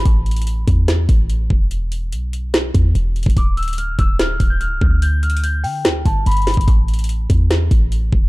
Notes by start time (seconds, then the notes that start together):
0.06 A1, kick, closed hi-hat
0.26 closed hi-hat
0.31 closed hi-hat
0.36 closed hi-hat
0.42 closed hi-hat
0.47 closed hi-hat
0.68 E2, kick, closed hi-hat
0.88 snare, closed hi-hat
1.09 A1, kick, closed hi-hat
1.30 closed hi-hat
1.50 E1, kick
1.71 closed hi-hat
1.92 closed hi-hat
2.12 B1, closed hi-hat
2.33 closed hi-hat
2.54 snare, closed hi-hat
2.75 E2, kick, closed hi-hat
2.95 E1, closed hi-hat
3.16 closed hi-hat
3.23 E1, kick, closed hi-hat
3.30 closed hi-hat
3.37 D1 D6, kick, closed hi-hat
3.57 E6, closed hi-hat
3.63 closed hi-hat
3.68 closed hi-hat
3.73 closed hi-hat
3.78 F6, closed hi-hat
3.99 D1 E6, kick, closed hi-hat
4.19 F6, snare, closed hi-hat
4.40 D1, kick, closed hi-hat
4.50 G6
4.61 F6, closed hi-hat
4.71 C1
4.81 D2, kick
5.02 G6, closed hi-hat
5.23 F6, closed hi-hat
5.30 closed hi-hat
5.37 closed hi-hat
5.44 G6, closed hi-hat
5.64 D3 G5, open hi-hat
5.85 D2, snare, closed hi-hat
6.06 G1 A5, kick, closed hi-hat
6.26 G1 B5, closed hi-hat
6.31 closed hi-hat
6.37 closed hi-hat
6.42 closed hi-hat
6.47 snare, closed hi-hat, open hi-hat
6.54 G1, kick, closed hi-hat
6.61 closed hi-hat
6.68 A1, kick, closed hi-hat
6.88 closed hi-hat
6.94 closed hi-hat
6.99 closed hi-hat
7.04 closed hi-hat
7.09 closed hi-hat
7.30 E2, kick, closed hi-hat
7.51 snare, closed hi-hat
7.71 A1, kick, closed hi-hat
7.92 closed hi-hat
8.13 E1, kick